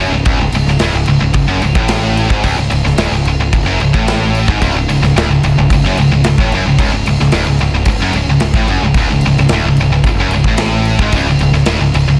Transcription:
0.00 distorted electric guitar F#2
0.10 picked electric bass C#1
0.14 distorted electric guitar C#2
0.25 picked electric bass C#1, distorted electric guitar C#2, kick, crash
0.37 picked electric bass C#1, distorted electric guitar C#2
0.51 picked electric bass C#1, distorted electric guitar C#2, crash
0.65 picked electric bass C#1, distorted electric guitar C#2, snare
0.79 picked electric bass D1, distorted electric guitar D2, snare, crash
0.93 picked electric bass C#1, distorted electric guitar C#2
1.06 picked electric bass C#1, distorted electric guitar C#2, crash
1.21 picked electric bass C#1, distorted electric guitar C#2
1.34 picked electric bass C#1, distorted electric guitar C#2, kick, crash
1.48 picked electric bass F#1, distorted electric guitar F#2
1.62 picked electric bass C#1, distorted electric guitar C#2, crash
1.75 picked electric bass A1, distorted electric guitar A2, kick
1.88 snare, crash
2.17 crash
2.29 picked electric bass G#1, distorted electric guitar G#2, kick
2.44 picked electric bass C#1, distorted electric guitar C#2, kick, crash
2.56 picked electric bass C#1, distorted electric guitar C#2
2.70 picked electric bass C#1, distorted electric guitar C#2, crash
2.85 picked electric bass C#1, distorted electric guitar C#2, snare
2.96 picked electric bass D1, distorted electric guitar D2, snare, crash
3.10 picked electric bass C#1, distorted electric guitar C#2
3.24 picked electric bass C#1, distorted electric guitar C#2, crash
3.37 picked electric bass C#1, distorted electric guitar C#2
3.53 picked electric bass C#1, distorted electric guitar C#2, kick, crash
3.64 picked electric bass F#1, distorted electric guitar F#2
3.79 picked electric bass C#1, distorted electric guitar C#2, crash
3.94 picked electric bass A1, distorted electric guitar A2, kick
4.08 snare, crash
4.35 crash
4.48 picked electric bass G#1, distorted electric guitar G#2, kick
4.62 picked electric bass C#1, distorted electric guitar C#2, kick, crash
4.73 picked electric bass C#1, distorted electric guitar C#2
4.88 picked electric bass C#1, distorted electric guitar C#2, crash
5.00 picked electric bass C#1, distorted electric guitar C#2, snare
5.15 picked electric bass D1, distorted electric guitar D2, snare, crash
5.28 picked electric bass C#1, distorted electric guitar C#2
5.42 picked electric bass C#1, distorted electric guitar C#2, crash
5.56 picked electric bass C#1, distorted electric guitar C#2
5.70 picked electric bass C#1, distorted electric guitar C#2, kick, crash
5.83 picked electric bass F#1, distorted electric guitar F#2
5.97 picked electric bass C#1, distorted electric guitar C#2, crash
6.10 picked electric bass C#1, distorted electric guitar C#2
6.23 picked electric bass C#1, distorted electric guitar C#2, snare, crash
6.38 picked electric bass A1, distorted electric guitar A2, kick
6.51 picked electric bass F#1, distorted electric guitar F#2, crash
6.64 picked electric bass C#1, distorted electric guitar C#2
6.78 picked electric bass C#1, distorted electric guitar C#2, kick, crash
6.92 picked electric bass C#1, distorted electric guitar C#2
7.05 picked electric bass C#1, distorted electric guitar C#2, crash
7.20 picked electric bass C#1, distorted electric guitar C#2, snare
7.32 picked electric bass D1, distorted electric guitar D2, snare, crash
7.46 picked electric bass C#1, distorted electric guitar C#2
7.59 picked electric bass C#1, distorted electric guitar C#2, crash
7.72 picked electric bass C#1, distorted electric guitar C#2
7.85 picked electric bass C#1, distorted electric guitar C#2, kick, crash
7.99 picked electric bass F#1, distorted electric guitar F#2
8.13 picked electric bass C#1, distorted electric guitar C#2, crash
8.26 picked electric bass C#1, distorted electric guitar C#2
8.40 picked electric bass C#1, distorted electric guitar C#2, snare, crash
8.54 picked electric bass A1, distorted electric guitar A2, kick
8.68 picked electric bass F#1, distorted electric guitar F#2, crash
8.81 picked electric bass C#1, distorted electric guitar C#2
8.94 picked electric bass C#1, distorted electric guitar C#2, kick, crash
9.09 picked electric bass C#1, distorted electric guitar C#2
9.21 picked electric bass C#1, crash
9.26 distorted electric guitar C#2
9.37 picked electric bass C#1, distorted electric guitar C#2, snare
9.49 picked electric bass D1, distorted electric guitar D2, snare, crash
9.63 picked electric bass C#1, distorted electric guitar C#2
9.75 picked electric bass C#1, crash
9.81 distorted electric guitar C#2
9.89 picked electric bass C#1, distorted electric guitar C#2
10.04 picked electric bass C#1, distorted electric guitar C#2, kick, crash
10.14 picked electric bass F#1
10.20 distorted electric guitar F#2
10.26 picked electric bass C#1
10.31 distorted electric guitar C#2, crash
10.44 picked electric bass A1, distorted electric guitar A2, kick
10.57 snare, crash
10.85 crash
10.99 picked electric bass G#1, distorted electric guitar G#2, kick
11.12 picked electric bass C#1, distorted electric guitar C#2, kick, crash
11.24 picked electric bass C#1
11.29 distorted electric guitar C#2
11.38 picked electric bass C#1, distorted electric guitar C#2, crash
11.52 picked electric bass C#1, distorted electric guitar C#2, snare
11.65 picked electric bass D1, distorted electric guitar D2, snare, crash
11.79 picked electric bass C#1, distorted electric guitar C#2
11.94 picked electric bass C#1, distorted electric guitar C#2, crash
12.07 picked electric bass C#1, distorted electric guitar C#2

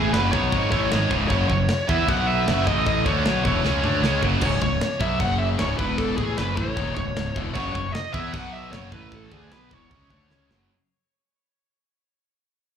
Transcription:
Already playing: fingered electric bass A1, distorted electric guitar A2 E3 A3, lead electric guitar G#4
0.13 fingered electric bass F#1, distorted electric guitar F#2 C#3 F#3, lead electric guitar B4, snare, china
0.31 fingered electric bass B1, distorted electric guitar B2 F#3 B3, lead electric guitar C#5, kick
0.52 fingered electric bass G#1, distorted electric guitar G#2 D#3 G#3, kick, china
0.71 fingered electric bass A1, distorted electric guitar A2 E3 A3, lead electric guitar C#5, kick
0.91 fingered electric bass G#1, distorted electric guitar G#2 D#3 G#3, snare, china
1.11 fingered electric bass C#1, distorted electric guitar C#2 G#2 C#3, kick
1.28 fingered electric bass F#1, distorted electric guitar F#2 C#3, lead electric guitar C#5, kick, china
1.32 distorted electric guitar F#3
1.49 fingered electric bass F#1, distorted electric guitar F#2 C#3, lead electric guitar C#5, kick
1.68 snare, china
1.88 fingered electric bass E2, distorted electric guitar E3 B3, lead electric guitar E5, kick
1.92 distorted electric guitar B3 E4
2.08 fingered electric bass B1, distorted electric guitar B2 F#3 B3, lead electric guitar F#5, kick, china
2.27 lead electric guitar E5
2.47 fingered electric bass F#1, distorted electric guitar F#2 C#3 F#3, snare, china
2.66 fingered electric bass A1, distorted electric guitar A2 E3 A3, lead electric guitar D#5, kick
2.86 lead electric guitar D#5, kick, china
3.05 fingered electric bass D2, distorted electric guitar D3 A3 D4, lead electric guitar C#5, kick
3.25 fingered electric bass B1, distorted electric guitar B2 F#3 B3, snare, china
3.44 fingered electric bass E1, distorted electric guitar E2 B2 E3, lead electric guitar C#5, kick
3.64 fingered electric bass C#2, distorted electric guitar C#3 G#3 C#4, snare
3.83 fingered electric bass D2, distorted electric guitar D3 A3 D4, mid tom
4.02 fingered electric bass C#2, distorted electric guitar C#3 G#3 C#4, snare
4.22 fingered electric bass F#1, distorted electric guitar F#2 C#3 F#3, kick
4.41 fingered electric bass C#1, distorted electric guitar C#2 G#2 C#3, lead electric guitar C#5, kick, crash, china
4.60 fingered electric bass C#1, distorted electric guitar C#2 G#2, lead electric guitar C#5, kick
4.81 snare, china
5.00 fingered electric bass B1, distorted electric guitar B2 F#3 B3, lead electric guitar E5, kick
5.20 fingered electric bass F#1, distorted electric guitar F#2 C#3 F#3, lead electric guitar F#5, kick, china
5.39 lead electric guitar E5
5.59 fingered electric bass C#1, distorted electric guitar C#2 G#2 C#3, lead electric guitar C#5, snare, china
5.78 fingered electric bass E1, distorted electric guitar E2 B2 E3, lead electric guitar B4, kick
5.98 lead electric guitar A4, kick, china
6.17 fingered electric bass A1, distorted electric guitar A2 E3 A3, lead electric guitar G#4, kick
6.37 fingered electric bass F#1, distorted electric guitar F#2 C#3 F#3, lead electric guitar B4, snare, china
6.56 fingered electric bass A1, distorted electric guitar A2 E3 A3, lead electric guitar C#5, kick
6.76 fingered electric bass D#1, distorted electric guitar D#2 A#2 D#3, kick, china
6.95 fingered electric bass C#1, distorted electric guitar C#2 G#2, lead electric guitar C#5, kick
7.16 fingered electric bass C#1, distorted electric guitar C#2 G#2, snare, china
7.36 fingered electric bass E1, distorted electric guitar E2 B2 E3, kick
7.54 fingered electric bass F#1, distorted electric guitar F#2 C#3 F#3, lead electric guitar C#5, kick, china
7.72 fingered electric bass F#1, distorted electric guitar F#2 C#3, lead electric guitar C#5, kick
7.92 lead electric guitar D#5, snare, china
8.13 fingered electric bass E2, distorted electric guitar E3 B3 E4, lead electric guitar E5, kick
8.32 fingered electric bass B1, distorted electric guitar B2 F#3 B3, lead electric guitar F#5, kick, china
8.53 lead electric guitar E5
8.72 fingered electric bass F#1, distorted electric guitar F#2 C#3 F#3, lead electric guitar C#5, snare, china
8.92 fingered electric bass A1, distorted electric guitar A2 E3 A3, lead electric guitar B4, kick
9.11 lead electric guitar A4, kick, china
9.32 fingered electric bass D2, distorted electric guitar D3 A3 D4, lead electric guitar G#4, kick
9.50 fingered electric bass B1, distorted electric guitar B2 F#3 B3, lead electric guitar B4, snare, china
9.71 fingered electric bass E1, distorted electric guitar E2 B2 E3, lead electric guitar C#5, kick
9.90 fingered electric bass C#2, distorted electric guitar C#3 G#3 C#4, kick, china
10.10 fingered electric bass D2, distorted electric guitar D3 A3 D4, lead electric guitar C#5, kick
10.30 fingered electric bass C#2, distorted electric guitar C#3 G#3 C#4, snare
10.49 fingered electric bass F#1, distorted electric guitar F#2 C#3 F#3, snare

